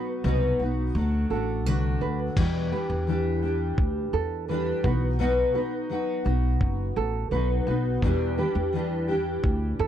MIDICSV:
0, 0, Header, 1, 5, 480
1, 0, Start_track
1, 0, Key_signature, 1, "minor"
1, 0, Tempo, 707380
1, 1605, Time_signature, 4, 2, 24, 8
1, 6700, End_track
2, 0, Start_track
2, 0, Title_t, "Nylon-string guitar"
2, 0, Program_c, 0, 24
2, 886, Note_on_c, 0, 69, 59
2, 1129, Note_off_c, 0, 69, 0
2, 1129, Note_on_c, 0, 71, 64
2, 1241, Note_off_c, 0, 71, 0
2, 1367, Note_on_c, 0, 71, 66
2, 1480, Note_off_c, 0, 71, 0
2, 1849, Note_on_c, 0, 71, 58
2, 1961, Note_off_c, 0, 71, 0
2, 2807, Note_on_c, 0, 69, 64
2, 3034, Note_off_c, 0, 69, 0
2, 3048, Note_on_c, 0, 71, 69
2, 3161, Note_off_c, 0, 71, 0
2, 3287, Note_on_c, 0, 71, 68
2, 3400, Note_off_c, 0, 71, 0
2, 3766, Note_on_c, 0, 71, 60
2, 3880, Note_off_c, 0, 71, 0
2, 4728, Note_on_c, 0, 69, 64
2, 4955, Note_off_c, 0, 69, 0
2, 4966, Note_on_c, 0, 71, 73
2, 5080, Note_off_c, 0, 71, 0
2, 5209, Note_on_c, 0, 71, 66
2, 5322, Note_off_c, 0, 71, 0
2, 5690, Note_on_c, 0, 71, 62
2, 5802, Note_off_c, 0, 71, 0
2, 6648, Note_on_c, 0, 69, 62
2, 6700, Note_off_c, 0, 69, 0
2, 6700, End_track
3, 0, Start_track
3, 0, Title_t, "Steel-string acoustic guitar"
3, 0, Program_c, 1, 25
3, 0, Note_on_c, 1, 54, 54
3, 0, Note_on_c, 1, 59, 36
3, 0, Note_on_c, 1, 63, 41
3, 0, Note_on_c, 1, 66, 44
3, 162, Note_off_c, 1, 66, 0
3, 163, Note_on_c, 1, 47, 73
3, 164, Note_off_c, 1, 54, 0
3, 164, Note_off_c, 1, 59, 0
3, 165, Note_off_c, 1, 63, 0
3, 167, Note_on_c, 1, 54, 67
3, 172, Note_on_c, 1, 59, 78
3, 173, Note_on_c, 1, 63, 78
3, 176, Note_on_c, 1, 66, 69
3, 394, Note_off_c, 1, 66, 0
3, 402, Note_on_c, 1, 66, 50
3, 404, Note_off_c, 1, 47, 0
3, 405, Note_off_c, 1, 63, 0
3, 406, Note_off_c, 1, 54, 0
3, 408, Note_off_c, 1, 59, 0
3, 413, Note_on_c, 1, 63, 42
3, 423, Note_on_c, 1, 59, 41
3, 643, Note_off_c, 1, 66, 0
3, 644, Note_on_c, 1, 54, 55
3, 649, Note_off_c, 1, 59, 0
3, 649, Note_off_c, 1, 63, 0
3, 651, Note_on_c, 1, 57, 55
3, 660, Note_on_c, 1, 62, 50
3, 666, Note_on_c, 1, 66, 58
3, 875, Note_off_c, 1, 66, 0
3, 883, Note_on_c, 1, 66, 48
3, 884, Note_off_c, 1, 54, 0
3, 888, Note_off_c, 1, 57, 0
3, 888, Note_off_c, 1, 62, 0
3, 896, Note_on_c, 1, 62, 46
3, 906, Note_on_c, 1, 57, 38
3, 1124, Note_off_c, 1, 66, 0
3, 1127, Note_off_c, 1, 57, 0
3, 1128, Note_on_c, 1, 50, 71
3, 1130, Note_off_c, 1, 62, 0
3, 1131, Note_on_c, 1, 54, 62
3, 1135, Note_on_c, 1, 57, 69
3, 1138, Note_on_c, 1, 62, 74
3, 1142, Note_on_c, 1, 66, 87
3, 1602, Note_on_c, 1, 40, 68
3, 1605, Note_off_c, 1, 50, 0
3, 1607, Note_off_c, 1, 54, 0
3, 1608, Note_on_c, 1, 47, 69
3, 1609, Note_on_c, 1, 52, 62
3, 1610, Note_off_c, 1, 57, 0
3, 1612, Note_off_c, 1, 62, 0
3, 1613, Note_off_c, 1, 66, 0
3, 1613, Note_on_c, 1, 55, 74
3, 1615, Note_on_c, 1, 62, 79
3, 1618, Note_on_c, 1, 67, 67
3, 1839, Note_off_c, 1, 67, 0
3, 1843, Note_off_c, 1, 40, 0
3, 1845, Note_off_c, 1, 62, 0
3, 1846, Note_off_c, 1, 47, 0
3, 1847, Note_off_c, 1, 52, 0
3, 1847, Note_on_c, 1, 67, 44
3, 1849, Note_off_c, 1, 55, 0
3, 1854, Note_on_c, 1, 62, 43
3, 1862, Note_on_c, 1, 55, 35
3, 1868, Note_on_c, 1, 52, 36
3, 2076, Note_off_c, 1, 52, 0
3, 2084, Note_off_c, 1, 55, 0
3, 2084, Note_on_c, 1, 52, 59
3, 2086, Note_off_c, 1, 67, 0
3, 2089, Note_off_c, 1, 62, 0
3, 2093, Note_on_c, 1, 55, 61
3, 2098, Note_on_c, 1, 62, 61
3, 2105, Note_on_c, 1, 67, 66
3, 2316, Note_off_c, 1, 67, 0
3, 2323, Note_off_c, 1, 62, 0
3, 2324, Note_off_c, 1, 52, 0
3, 2324, Note_on_c, 1, 67, 49
3, 2329, Note_off_c, 1, 55, 0
3, 2331, Note_on_c, 1, 62, 49
3, 2339, Note_on_c, 1, 55, 39
3, 2343, Note_on_c, 1, 52, 42
3, 3035, Note_off_c, 1, 52, 0
3, 3042, Note_off_c, 1, 55, 0
3, 3043, Note_on_c, 1, 52, 53
3, 3045, Note_off_c, 1, 67, 0
3, 3048, Note_off_c, 1, 62, 0
3, 3050, Note_on_c, 1, 55, 56
3, 3057, Note_on_c, 1, 62, 67
3, 3064, Note_on_c, 1, 67, 58
3, 3277, Note_off_c, 1, 67, 0
3, 3280, Note_on_c, 1, 66, 51
3, 3284, Note_off_c, 1, 52, 0
3, 3288, Note_off_c, 1, 55, 0
3, 3288, Note_off_c, 1, 62, 0
3, 3290, Note_on_c, 1, 63, 45
3, 3301, Note_on_c, 1, 59, 44
3, 3519, Note_off_c, 1, 59, 0
3, 3521, Note_on_c, 1, 47, 83
3, 3523, Note_off_c, 1, 63, 0
3, 3523, Note_off_c, 1, 66, 0
3, 3526, Note_on_c, 1, 54, 74
3, 3527, Note_on_c, 1, 59, 77
3, 3532, Note_on_c, 1, 63, 82
3, 3535, Note_on_c, 1, 66, 84
3, 3749, Note_off_c, 1, 66, 0
3, 3757, Note_on_c, 1, 66, 51
3, 3759, Note_off_c, 1, 63, 0
3, 3763, Note_off_c, 1, 47, 0
3, 3766, Note_off_c, 1, 54, 0
3, 3767, Note_off_c, 1, 59, 0
3, 3767, Note_on_c, 1, 63, 47
3, 3777, Note_on_c, 1, 59, 33
3, 4000, Note_off_c, 1, 59, 0
3, 4000, Note_on_c, 1, 54, 53
3, 4001, Note_off_c, 1, 66, 0
3, 4006, Note_off_c, 1, 63, 0
3, 4008, Note_on_c, 1, 59, 54
3, 4014, Note_on_c, 1, 63, 59
3, 4021, Note_on_c, 1, 66, 61
3, 4231, Note_off_c, 1, 66, 0
3, 4239, Note_on_c, 1, 66, 55
3, 4242, Note_off_c, 1, 63, 0
3, 4243, Note_off_c, 1, 54, 0
3, 4247, Note_off_c, 1, 59, 0
3, 4250, Note_on_c, 1, 63, 44
3, 4259, Note_on_c, 1, 59, 40
3, 4962, Note_on_c, 1, 54, 53
3, 4963, Note_off_c, 1, 66, 0
3, 4968, Note_off_c, 1, 63, 0
3, 4969, Note_off_c, 1, 59, 0
3, 4972, Note_on_c, 1, 59, 54
3, 4978, Note_on_c, 1, 63, 56
3, 4984, Note_on_c, 1, 66, 63
3, 5196, Note_off_c, 1, 66, 0
3, 5204, Note_off_c, 1, 54, 0
3, 5204, Note_on_c, 1, 66, 49
3, 5206, Note_off_c, 1, 63, 0
3, 5209, Note_off_c, 1, 59, 0
3, 5214, Note_on_c, 1, 63, 48
3, 5226, Note_on_c, 1, 59, 43
3, 5445, Note_off_c, 1, 66, 0
3, 5445, Note_on_c, 1, 40, 74
3, 5450, Note_off_c, 1, 63, 0
3, 5450, Note_on_c, 1, 47, 76
3, 5451, Note_on_c, 1, 52, 81
3, 5452, Note_off_c, 1, 59, 0
3, 5454, Note_on_c, 1, 55, 76
3, 5457, Note_on_c, 1, 62, 84
3, 5460, Note_on_c, 1, 67, 71
3, 5675, Note_off_c, 1, 67, 0
3, 5683, Note_on_c, 1, 67, 55
3, 5685, Note_off_c, 1, 62, 0
3, 5686, Note_off_c, 1, 40, 0
3, 5688, Note_off_c, 1, 47, 0
3, 5689, Note_off_c, 1, 52, 0
3, 5690, Note_off_c, 1, 55, 0
3, 5693, Note_on_c, 1, 62, 48
3, 5699, Note_on_c, 1, 55, 41
3, 5705, Note_on_c, 1, 52, 37
3, 5913, Note_off_c, 1, 52, 0
3, 5922, Note_off_c, 1, 55, 0
3, 5922, Note_on_c, 1, 52, 56
3, 5925, Note_off_c, 1, 67, 0
3, 5930, Note_off_c, 1, 62, 0
3, 5930, Note_on_c, 1, 55, 61
3, 5939, Note_on_c, 1, 62, 60
3, 5944, Note_on_c, 1, 67, 63
3, 6154, Note_off_c, 1, 67, 0
3, 6161, Note_off_c, 1, 62, 0
3, 6162, Note_on_c, 1, 67, 54
3, 6164, Note_off_c, 1, 52, 0
3, 6168, Note_off_c, 1, 55, 0
3, 6169, Note_on_c, 1, 62, 52
3, 6178, Note_on_c, 1, 55, 45
3, 6184, Note_on_c, 1, 52, 44
3, 6700, Note_off_c, 1, 52, 0
3, 6700, Note_off_c, 1, 55, 0
3, 6700, Note_off_c, 1, 62, 0
3, 6700, Note_off_c, 1, 67, 0
3, 6700, End_track
4, 0, Start_track
4, 0, Title_t, "Upright bass"
4, 0, Program_c, 2, 32
4, 163, Note_on_c, 2, 36, 90
4, 361, Note_off_c, 2, 36, 0
4, 404, Note_on_c, 2, 35, 73
4, 601, Note_off_c, 2, 35, 0
4, 643, Note_on_c, 2, 38, 91
4, 841, Note_off_c, 2, 38, 0
4, 883, Note_on_c, 2, 33, 75
4, 1123, Note_off_c, 2, 33, 0
4, 1123, Note_on_c, 2, 36, 80
4, 1321, Note_off_c, 2, 36, 0
4, 1362, Note_on_c, 2, 38, 69
4, 1560, Note_off_c, 2, 38, 0
4, 1606, Note_on_c, 2, 40, 79
4, 1802, Note_off_c, 2, 40, 0
4, 1965, Note_on_c, 2, 40, 80
4, 2538, Note_off_c, 2, 40, 0
4, 2565, Note_on_c, 2, 38, 76
4, 2762, Note_off_c, 2, 38, 0
4, 2803, Note_on_c, 2, 40, 84
4, 3198, Note_off_c, 2, 40, 0
4, 3284, Note_on_c, 2, 35, 77
4, 3679, Note_off_c, 2, 35, 0
4, 4245, Note_on_c, 2, 35, 85
4, 4442, Note_off_c, 2, 35, 0
4, 4483, Note_on_c, 2, 30, 86
4, 4681, Note_off_c, 2, 30, 0
4, 4724, Note_on_c, 2, 33, 81
4, 4922, Note_off_c, 2, 33, 0
4, 4960, Note_on_c, 2, 35, 77
4, 5160, Note_off_c, 2, 35, 0
4, 5202, Note_on_c, 2, 35, 74
4, 5401, Note_off_c, 2, 35, 0
4, 5443, Note_on_c, 2, 40, 78
4, 5641, Note_off_c, 2, 40, 0
4, 5802, Note_on_c, 2, 40, 82
4, 6378, Note_off_c, 2, 40, 0
4, 6401, Note_on_c, 2, 38, 86
4, 6600, Note_off_c, 2, 38, 0
4, 6645, Note_on_c, 2, 40, 89
4, 6700, Note_off_c, 2, 40, 0
4, 6700, End_track
5, 0, Start_track
5, 0, Title_t, "Drums"
5, 1606, Note_on_c, 9, 36, 98
5, 1607, Note_on_c, 9, 49, 77
5, 1674, Note_off_c, 9, 36, 0
5, 1674, Note_off_c, 9, 49, 0
5, 2565, Note_on_c, 9, 36, 93
5, 2632, Note_off_c, 9, 36, 0
5, 3286, Note_on_c, 9, 36, 95
5, 3354, Note_off_c, 9, 36, 0
5, 4484, Note_on_c, 9, 36, 86
5, 4552, Note_off_c, 9, 36, 0
5, 5445, Note_on_c, 9, 36, 99
5, 5513, Note_off_c, 9, 36, 0
5, 6403, Note_on_c, 9, 36, 94
5, 6471, Note_off_c, 9, 36, 0
5, 6700, End_track
0, 0, End_of_file